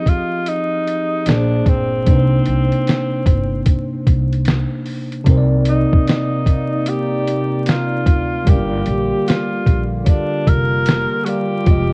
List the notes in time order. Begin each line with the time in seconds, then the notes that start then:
Already playing: F3 C4 D#4 G4 G#4 D#5
0.06 F4, kick, closed hi-hat
0.46 D#4, closed hi-hat
0.87 closed hi-hat
1.26 A#1 A#2 A#3 D4 G#4 A#4, snare, closed hi-hat
1.36 C5
1.66 G1 C4, kick, closed hi-hat
2.05 C2 C3 A#3 D4, kick, closed hi-hat
2.10 D#4 B4
2.18 C5
2.46 C2, closed hi-hat
2.72 closed hi-hat
2.87 snare, closed hi-hat
3.26 G1, kick, closed hi-hat
3.66 kick, closed hi-hat
4.07 C2, kick, closed hi-hat
4.33 closed hi-hat
4.45 snare, closed hi-hat
4.86 open hi-hat
5.12 closed hi-hat
5.24 C2 C3 A#3 C4 D#4 D5, kick, closed hi-hat
5.29 A#4 C5
5.38 D5
5.65 D#4, closed hi-hat
5.93 kick
6.07 D#4, snare, closed hi-hat
6.46 kick, closed hi-hat
6.86 G4, closed hi-hat
7.27 closed hi-hat
7.64 G4, closed hi-hat
7.68 F4, snare
8.06 D2, kick, closed hi-hat
8.45 G1 D3 G3 A#3 F4 G4 A#4, kick, closed hi-hat
8.50 D5 F5
8.86 A#1, closed hi-hat
9.28 F4, snare, closed hi-hat
9.66 A#1, kick, closed hi-hat
10.04 C#4, kick, closed hi-hat
10.09 D4
10.47 F1 A#4, kick, closed hi-hat
10.86 snare, closed hi-hat
11.25 G3 F#4 G4 A#4 D5, closed hi-hat
11.29 F5
11.64 F1 D#3 F3 G#3 F4 G4, kick, closed hi-hat
11.69 G#3 D#5